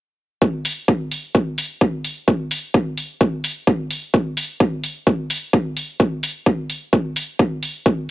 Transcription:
0.42 kick
0.65 open hi-hat
0.88 kick
1.11 open hi-hat
1.35 kick
1.58 open hi-hat
1.81 kick
2.04 open hi-hat
2.28 kick
2.51 open hi-hat
2.74 kick
2.97 open hi-hat
3.21 kick
3.44 open hi-hat
3.67 kick
3.91 open hi-hat
4.14 kick
4.37 open hi-hat
4.60 kick
4.84 open hi-hat
5.07 kick
5.30 open hi-hat
5.53 kick
5.77 open hi-hat
6.00 kick
6.23 open hi-hat
6.46 kick
6.70 open hi-hat
6.93 kick
7.16 open hi-hat
7.39 kick
7.63 open hi-hat
7.86 kick

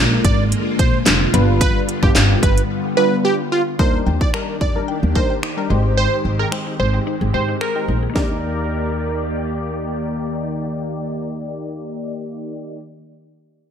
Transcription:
Already playing: A#1 D3 G#3 A#3 D4 F4 A#4
0.25 G#1 D5, kick, closed hi-hat
0.52 closed hi-hat
0.79 A#1 C5, kick, closed hi-hat
1.06 F1, snare, clap, closed hi-hat
1.33 G1 G3 B3 D4 F4 B4, closed hi-hat
1.61 B4, kick, closed hi-hat
1.89 closed hi-hat
2.03 G1 G3 B3 D4 F4 G4, kick
2.15 G1, snare, clap, closed hi-hat
2.43 G1 B4, kick, closed hi-hat
2.58 closed hi-hat
2.97 G3 B3 D4 F4 B4
3.25 G4
3.52 F4
3.79 D#2 D#3 G3 A#3 D4 D#4 G4 A#4 C5, kick
4.06 D#2 G5
4.21 D#4 D5, kick
4.34 G3 D4 D#4 A#4, finger snap
4.61 F2 D#4 D5, kick
4.75 G3 D4 D#4 A#4
4.88 G5
5.03 D#2
5.15 D#3 G3 D4 D#4 A#4 C5, kick
5.30 G5
5.43 D#4, finger snap
5.57 G3 D4 D#4 A#4
5.70 G#1 G#3 C4 D#4 G4 C5 G5
5.97 C5
6.25 G#1
6.39 G#4 A#4
6.52 G#3 D#4 G4 C5 G5, finger snap
6.67 D#4
6.79 G#1 G#4 C5
6.93 G#3 D#4 G4 C5 G5
7.07 D#4
7.21 G#1 G#4
7.33 G#2 G#3 D#4 G4 C5 G5
7.48 D#4
7.61 G#4 A#4, finger snap
7.75 G#3 D#4 G4 C5 G5
7.88 A#1 D#4
8.03 G#4
8.10 A#3 D4
8.15 D#2 D#3 A#3 D#4 G4 A#4 D5, kick, snare
8.22 G4

